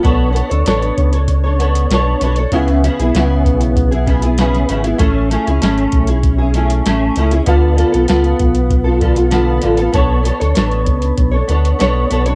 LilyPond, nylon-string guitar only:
\new Staff \with { instrumentName = "Nylon-string guitar" } { \time 4/4 \key b \dorian \tempo 4 = 97 <b d' a' cis''>8 <b d' a' cis''>16 <d' a' cis''>16 <b d' a' cis''>8. <d' a' cis''>8 <d' a' cis''>16 <b d' a' cis''>8 <b d' a' cis''>8 <b d' a' cis''>16 <d' a' cis''>16 | <cis b e' gis'>8 <cis b e' gis'>16 <b e' gis'>16 <cis b e' gis'>4~ <cis b e' gis'>16 <b e' gis'>16 <cis b e' gis'>16 <b e' gis'>16 <cis b e' gis'>8 <cis b e' gis'>16 <b e' gis'>16 | <a cis' e' gis'>8 <a cis' e' gis'>16 <cis' e' gis'>16 <a cis' e' gis'>8. <cis' e' gis'>8 <cis' e' gis'>16 <a cis' e' gis'>8 <a cis' e' gis'>8 <a cis' e' gis'>16 <cis' e' gis'>16 | <d b f' a'>8 <d b f' a'>16 <b f' a'>16 <b f' a'>4~ <b f' a'>16 <b f' a'>16 <d b f' a'>16 <b f' a'>16 <d b f' a'>8 <d b f' a'>16 <b f' a'>16 |
<b d' a' cis''>8 <b d' a' cis''>16 <d' a' cis''>16 <b d' a' cis''>4~ <b d' a' cis''>16 <d' a' cis''>16 <b d' a' cis''>8 <b d' a' cis''>8 <b d' a' cis''>16 <d' a' cis''>16 | }